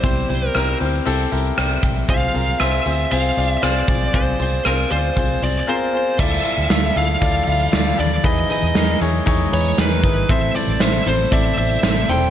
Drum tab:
CC |----------------|----------------|----------------|x---------------|
HH |x-x-x-x-x-x-x-x-|x-x-x-x-x-x-x-x-|x-x-x-x-x-x-----|--x-x-x-x-xxx-x-|
SD |----r-------r---|----r-------r---|----r-----------|----o-------o---|
BD |o-------------o-|o-------------o-|o-------o-------|o-------o-------|

CC |----------------|----------------|
HH |x-x-x-x-x-xxx-x-|x-x-x-x-x-xxxxx-|
SD |----o-------o---|----o-------o---|
BD |o-------o-----o-|o-------o-------|